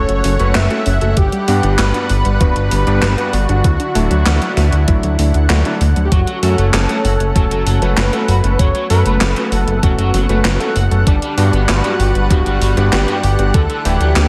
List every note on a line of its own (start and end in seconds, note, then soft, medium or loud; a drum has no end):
0.00 0.36 A3 medium
0.00 1.13 A3 medium
0.00 0.36 C#4 medium
0.00 1.13 C#4 medium
0.00 0.36 F#4 medium
0.00 0.36 A4 loud
0.00 0.57 C#5 loud
0.00 6.08 F#5 medium
0.09 0.22 F#1 medium
0.09 0.21 F#4 medium
0.09 closed hi-hat soft
0.24 0.38 F#1 medium
0.24 0.39 C#4 loud
0.24 open hi-hat medium
0.40 0.53 F#1 medium
0.40 0.67 A3 loud
0.40 0.47 A3 medium
0.40 0.67 C#4 medium
0.40 0.67 F#4 medium
0.40 0.67 B4 loud
0.40 closed hi-hat soft
0.55 0.68 F#1 loud
0.55 0.63 F#3 medium
0.55 1.16 E5 loud
0.55 snare loud
0.55 clap medium
0.55 closed hi-hat medium
0.70 0.84 A3 loud
0.70 0.85 A3 medium
0.70 0.84 C#4 medium
0.70 0.84 F#4 medium
0.70 0.84 A4 loud
0.70 closed hi-hat soft
0.86 1.00 F#1 loud
0.86 1.01 C#4 medium
0.86 open hi-hat medium
1.01 1.15 F#1 medium
1.01 1.15 A3 medium
1.01 1.15 C#4 medium
1.01 1.15 F#4 medium
1.01 1.09 F#4 medium
1.01 1.15 A4 medium
1.01 closed hi-hat soft
1.17 1.30 G1 loud
1.17 1.25 F#3 medium
1.17 3.62 G3 medium
1.17 6.08 D4 medium
1.17 1.75 G4 loud
1.17 3.62 B4 loud
1.17 kick loud
1.17 closed hi-hat medium
1.32 1.45 G3 loud
1.32 closed hi-hat soft
1.48 1.61 G2 medium
1.48 1.91 G2 loud
1.48 1.91 G3 medium
1.48 1.91 B3 medium
1.48 1.61 B3 medium
1.48 1.91 D4 medium
1.48 1.91 F#5 loud
1.48 open hi-hat medium
1.63 1.77 G1 medium
1.63 1.71 D4 medium
1.63 closed hi-hat soft
1.79 1.92 G1 loud
1.79 1.92 F#4 loud
1.79 2.37 B4 loud
1.79 snare loud
1.79 clap loud
1.79 closed hi-hat medium
1.94 2.08 G2 medium
1.94 2.08 G3 medium
1.94 2.08 B3 medium
1.94 2.08 D4 medium
1.94 2.07 D4 medium
1.94 2.08 F#4 medium
1.94 closed hi-hat soft
2.09 2.23 G1 medium
2.09 2.25 B3 loud
2.09 open hi-hat medium
2.25 2.39 G1 medium
2.25 2.33 G3 medium
2.25 closed hi-hat soft
2.41 2.54 D1 loud
2.41 2.83 G2 medium
2.41 2.48 F#3 medium
2.41 2.83 G3 medium
2.41 2.83 B3 medium
2.41 2.83 D4 medium
2.41 2.83 F#4 loud
2.41 3.35 B4 loud
2.41 kick loud
2.41 closed hi-hat medium
2.56 2.69 G1 medium
2.56 2.71 G3 medium
2.56 closed hi-hat soft
2.71 2.85 G1 medium
2.71 2.87 B3 medium
2.71 open hi-hat medium
2.87 3.00 G1 medium
2.87 3.14 G2 loud
2.87 3.14 G3 medium
2.87 3.14 B3 medium
2.87 3.14 D4 medium
2.87 2.95 D4 medium
2.87 3.14 G4 loud
2.87 closed hi-hat soft
3.02 3.16 G1 loud
3.02 3.10 F#3 medium
3.02 snare loud
3.02 clap loud
3.02 closed hi-hat medium
3.18 3.31 G2 loud
3.18 3.31 G3 medium
3.18 3.31 G3 loud
3.18 3.31 B3 medium
3.18 3.31 D4 medium
3.18 3.31 F#4 loud
3.18 closed hi-hat soft
3.33 3.47 G1 loud
3.33 3.46 B3 medium
3.33 5.50 F#4 loud
3.33 open hi-hat medium
3.49 3.62 G1 medium
3.49 3.62 G3 medium
3.49 3.62 B3 medium
3.49 3.62 D4 medium
3.49 3.57 D4 medium
3.49 3.62 F#4 loud
3.49 closed hi-hat soft
3.64 3.78 D2 loud
3.64 6.09 D3 medium
3.64 6.09 E4 medium
3.64 3.77 E4 loud
3.64 kick loud
3.64 closed hi-hat medium
3.80 3.93 D4 medium
3.80 closed hi-hat soft
3.95 4.09 D1 loud
3.95 4.38 F#3 loud
3.95 4.38 A3 medium
3.95 4.10 A3 loud
3.95 4.38 D4 medium
3.95 4.38 E4 loud
3.95 open hi-hat medium
4.11 4.24 D2 medium
4.11 4.18 F#3 medium
4.11 closed hi-hat soft
4.26 4.39 D2 loud
4.26 4.34 E3 medium
4.26 snare loud
4.26 clap loud
4.26 closed hi-hat medium
4.42 4.55 F#3 medium
4.42 4.57 F#3 medium
4.42 4.55 A3 medium
4.42 4.55 D4 medium
4.42 4.55 E4 medium
4.42 closed hi-hat soft
4.57 4.70 D2 medium
4.57 4.72 A3 medium
4.57 snare medium
4.57 open hi-hat medium
4.72 4.86 D2 medium
4.72 4.80 D4 medium
4.72 closed hi-hat soft
4.88 5.01 A1 loud
4.88 4.96 E3 medium
4.88 5.31 F#3 medium
4.88 5.31 A3 medium
4.88 5.31 D4 medium
4.88 5.31 E4 loud
4.88 kick loud
4.88 closed hi-hat medium
5.03 5.17 D2 medium
5.03 5.16 F#3 loud
5.03 closed hi-hat soft
5.19 5.32 D2 medium
5.19 5.32 A3 medium
5.19 open hi-hat medium
5.34 5.48 D2 medium
5.34 5.42 D4 medium
5.34 closed hi-hat soft
5.50 5.63 D2 loud
5.50 5.63 F#3 medium
5.50 5.63 A3 medium
5.50 5.63 D4 medium
5.50 5.63 E4 loud
5.50 5.63 F#4 loud
5.50 snare loud
5.50 clap loud
5.50 closed hi-hat medium
5.65 5.79 F#3 medium
5.65 5.79 A3 medium
5.65 5.79 D4 medium
5.65 5.78 D4 medium
5.65 5.79 E4 loud
5.65 closed hi-hat soft
5.81 5.94 D2 loud
5.81 5.96 A3 loud
5.81 open hi-hat medium
5.96 6.10 D2 medium
5.96 6.04 F#3 medium
5.96 closed hi-hat soft
6.05 6.13 G4 medium
6.12 6.25 F#1 loud
6.12 6.20 F#3 medium
6.12 11.03 A3 medium
6.12 8.57 C#4 medium
6.12 6.75 F#4 loud
6.12 14.28 F#5 medium
6.12 kick loud
6.12 closed hi-hat medium
6.27 6.39 F#3 medium
6.27 closed hi-hat soft
6.43 6.56 F#2 medium
6.43 6.54 F#3 medium
6.43 6.86 A3 loud
6.43 6.86 C#4 medium
6.43 6.86 F#4 medium
6.43 6.86 A4 loud
6.43 open hi-hat medium
6.58 6.71 F#1 medium
6.58 6.66 A3 medium
6.58 closed hi-hat soft
6.73 6.87 F#1 loud
6.73 7.35 A4 loud
6.73 snare loud
6.73 clap loud
6.73 closed hi-hat medium
6.89 6.97 F#3 loud
6.89 7.03 A3 medium
6.89 7.03 C#4 medium
6.89 7.03 F#4 medium
6.89 7.03 A4 medium
6.89 closed hi-hat soft
7.04 7.18 F#1 loud
7.04 7.12 F#4 loud
7.04 open hi-hat medium
7.20 7.33 F#1 medium
7.20 closed hi-hat soft
7.36 7.43 F#3 medium
7.36 7.78 A3 medium
7.36 7.78 C#4 medium
7.36 7.78 F#4 medium
7.36 7.99 A4 loud
7.36 7.78 A4 loud
7.36 kick loud
7.36 closed hi-hat medium
7.51 7.64 F#1 medium
7.51 7.63 F#3 medium
7.51 closed hi-hat soft
7.66 7.80 F#1 medium
7.66 7.78 F#3 medium
7.66 open hi-hat medium
7.82 7.95 F#1 medium
7.82 8.09 A3 loud
7.82 7.90 A3 medium
7.82 8.09 C#4 medium
7.82 8.09 F#4 medium
7.82 8.09 B4 loud
7.82 closed hi-hat soft
7.97 8.11 F#1 loud
7.97 8.61 B4 loud
7.97 snare loud
7.97 clap loud
7.97 closed hi-hat medium
8.13 8.21 F#3 loud
8.13 8.26 A3 loud
8.13 8.26 C#4 medium
8.13 8.26 F#4 medium
8.13 8.26 A4 loud
8.13 closed hi-hat soft
8.28 8.42 F#1 loud
8.28 8.36 F#4 loud
8.28 open hi-hat medium
8.44 8.57 F#1 medium
8.44 8.57 A3 medium
8.44 8.57 C#4 medium
8.44 8.57 F#4 medium
8.44 8.57 A4 loud
8.44 closed hi-hat soft
8.59 8.73 F#1 loud
8.59 8.67 F#3 medium
8.59 11.05 B3 medium
8.59 8.90 C#5 loud
8.59 kick loud
8.59 closed hi-hat medium
8.75 8.87 F#3 medium
8.75 closed hi-hat soft
8.90 9.04 F#2 loud
8.90 9.02 F#3 medium
8.90 9.33 A3 loud
8.90 9.33 C#4 medium
8.90 9.33 F#4 medium
8.90 9.33 A4 loud
8.90 9.54 B4 loud
8.90 open hi-hat medium
9.06 9.19 F#1 medium
9.06 9.13 A3 medium
9.06 closed hi-hat soft
9.21 9.34 F#1 loud
9.21 snare loud
9.21 clap loud
9.21 closed hi-hat medium
9.36 9.44 F#3 loud
9.36 9.50 A3 medium
9.36 9.50 C#4 medium
9.36 9.50 F#4 medium
9.36 9.50 A4 medium
9.36 closed hi-hat soft
9.52 9.65 F#1 medium
9.52 9.60 F#4 loud
9.52 9.85 A4 loud
9.52 open hi-hat medium
9.67 9.81 F#1 medium
9.67 closed hi-hat soft
9.83 9.96 E1 loud
9.83 9.91 F#3 medium
9.83 10.26 A3 medium
9.83 10.26 C#4 medium
9.83 10.26 F#4 medium
9.83 10.76 F#4 medium
9.83 10.26 A4 loud
9.83 kick loud
9.83 closed hi-hat medium
9.98 10.12 F#1 medium
9.98 10.10 F#3 medium
9.98 closed hi-hat soft
10.14 10.27 F#1 medium
10.14 10.26 F#3 medium
10.14 open hi-hat medium
10.29 10.43 F#1 medium
10.29 10.57 A3 loud
10.29 10.37 A3 medium
10.29 10.57 C#4 medium
10.29 10.57 F#4 medium
10.29 10.57 B4 loud
10.29 closed hi-hat soft
10.45 10.58 F#1 loud
10.45 snare loud
10.45 clap loud
10.45 closed hi-hat medium
10.60 10.68 F#3 loud
10.60 10.74 A3 loud
10.60 10.74 C#4 medium
10.60 10.74 F#4 medium
10.60 10.74 A4 loud
10.60 closed hi-hat soft
10.76 10.89 F#1 loud
10.76 10.84 F#4 loud
10.76 open hi-hat medium
10.91 11.05 F#1 medium
10.91 11.05 A3 medium
10.91 11.05 C#4 medium
10.91 11.05 F#4 medium
10.91 11.05 A4 loud
10.91 closed hi-hat soft
11.07 11.20 G1 loud
11.07 11.15 G3 medium
11.07 13.52 G3 medium
11.07 14.28 D4 medium
11.07 11.65 D4 medium
11.07 13.52 B4 medium
11.07 kick loud
11.07 closed hi-hat medium
11.22 11.34 G3 medium
11.22 closed hi-hat soft
11.37 11.51 G2 medium
11.37 11.80 G2 loud
11.37 11.49 G3 medium
11.37 11.80 G3 medium
11.37 11.80 B3 medium
11.37 11.80 D4 medium
11.37 11.80 F#4 loud
11.37 open hi-hat medium
11.53 11.66 G1 medium
11.53 11.61 B3 medium
11.53 closed hi-hat soft
11.69 11.82 G1 loud
11.69 12.27 F#4 loud
11.69 snare loud
11.69 clap medium
11.69 closed hi-hat medium
11.84 11.97 G2 medium
11.84 11.92 G3 loud
11.84 11.97 G3 medium
11.84 11.97 B3 medium
11.84 11.97 D4 medium
11.84 11.97 F#4 medium
11.84 closed hi-hat soft
11.99 12.13 G1 loud
11.99 12.07 G4 loud
11.99 open hi-hat medium
12.15 12.28 G1 medium
12.15 closed hi-hat soft
12.30 12.73 G2 medium
12.30 12.38 G3 medium
12.30 12.73 G3 medium
12.30 12.73 B3 medium
12.30 12.73 D4 medium
12.30 12.73 F#4 loud
12.30 12.88 F#4 loud
12.30 kick loud
12.30 closed hi-hat medium
12.46 12.59 G1 medium
12.46 12.57 G3 medium
12.46 closed hi-hat soft
12.61 12.75 G1 medium
12.61 12.73 G3 medium
12.61 open hi-hat medium
12.77 12.90 G1 medium
12.77 13.04 G2 loud
12.77 13.04 G3 medium
12.77 12.85 B3 medium
12.77 13.04 B3 medium
12.77 13.04 D4 medium
12.77 13.04 G4 loud
12.77 closed hi-hat soft
12.92 13.06 G1 loud
12.92 13.56 G4 loud
12.92 snare loud
12.92 clap medium
12.92 closed hi-hat medium
13.08 13.21 G2 loud
13.08 13.16 G3 loud
13.08 13.21 G3 medium
13.08 13.21 B3 medium
13.08 13.21 D4 medium
13.08 13.21 F#4 loud
13.08 closed hi-hat soft
13.23 13.37 G1 loud
13.23 13.31 G4 loud
13.23 open hi-hat medium
13.39 13.52 G1 medium
13.39 13.52 G3 medium
13.39 13.52 B3 medium
13.39 13.52 D4 medium
13.39 13.52 F#4 loud
13.39 closed hi-hat soft
13.54 13.68 D2 loud
13.54 14.28 D3 medium
13.54 13.62 D3 medium
13.54 14.28 E4 medium
13.54 13.85 A4 loud
13.54 kick loud
13.54 closed hi-hat medium
13.70 13.81 D3 medium
13.70 closed hi-hat soft
13.85 13.98 D1 medium
13.85 13.97 D3 medium
13.85 14.28 E3 loud
13.85 14.28 A3 medium
13.85 14.28 D4 medium
13.85 14.28 E4 loud
13.85 14.28 G4 loud
13.85 open hi-hat medium
14.01 14.14 D2 medium
14.01 14.08 F#3 medium
14.01 closed hi-hat soft
14.16 14.28 D2 loud
14.16 snare loud
14.16 clap medium
14.16 closed hi-hat medium